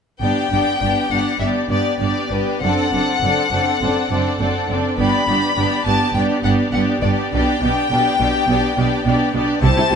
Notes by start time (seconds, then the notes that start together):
0.21 G1 G2 B3 D4 G4 D5 G5
0.52 G1 G2 B3 D4 G4 D5
0.81 G1 G2 B3 D4 G4 D5
1.10 G1 G2 B3 D4 G4 D5 F#5
1.40 G1 G2 B3 D4 G4 D5 E5
1.69 G1 G2 B3 D4 G4 D5
2.00 G1 G2 B3 D4 G4 D5
2.31 G1 G2 B3 D4 G4 B4 D5
2.62 F#1 F#2 C4 D4 A4 D5 F#5
2.92 F#1 F#2 C4 D4 A4 D5
3.22 F#1 F#2 C4 D4 A4 D5
3.52 F#1 F#2 C4 D4 A4 D5
3.81 F#1 F#2 C4 D4 A4 D5
4.10 F#1 F#2 C4 D4 A4 D5
4.40 F#1 F#2 C4 D4 A4 D5
4.69 F#1 F#2 C4 D4 A4 D5
4.98 G1 G2 B3 D4 G4 D5 B5
5.27 G1 G2 B3 D4 G4 D5
5.56 G1 G2 B3 D4 G4 D5
5.86 G1 G2 B3 D4 G4 D5 A5
6.14 G1 G2 B3 D4 G4 D5 G5
6.43 G1 G2 B3 D4 G4 D5 F#5
6.73 G1 G2 B3 D4 G4 D5 F#5
7.02 G1 G2 B3 D4 G4 D5
7.32 B1 B2 B3 D4 G4 D5 G5
7.62 B1 B2 B3 D4 G4 D5
7.91 B1 B2 B3 D4 G4 D5
8.19 B1 B2 B3 D4 G4 D5
8.48 B1 B2 B3 D4 G4 D5
8.77 B1 B2 B3 D4 G4 D5
9.05 B1 B2 B3 D4 G4 D5
9.34 B1 B2 B3 D4 G4 D5
9.62 C2 C3 G3 E4 G4 C5 A5
9.76 C3 G3 E4
9.91 C2 C3 G3 E4